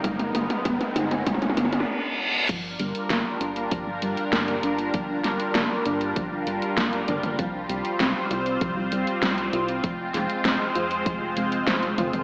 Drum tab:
CC |--------------------------------|x-------------------------------|--------------------------------|--------------------------------|
HH |x-x-x-x-x-x-x-x-x-x-x-x---------|x---x-x-x---x-x-x---x-x-x-x-x-x-|x---x-x-x---x-x-x---x-x-x-x-x-x-|x---x-x-x---x-x-x---x-x-x-x-x-x-|
SD |--------------------------------|--------o---------------o-------|----o---o---------------o-------|--------o---------------o-------|
T2 |o-o-o-o-o-o-o-o-oooooooo--------|--------------------------------|----------------------------o-o-|--------------------------------|
BD |o-------o-------o---------------|o---------------o---------------|o---------------o---------------|o---------------o---------------|

CC |--------------------------------|
HH |x---x-x-x---x-x-x---x-x-x-x-x-x-|
SD |----o---o---------------o-------|
T2 |----------------------------o-o-|
BD |o---------------o---------------|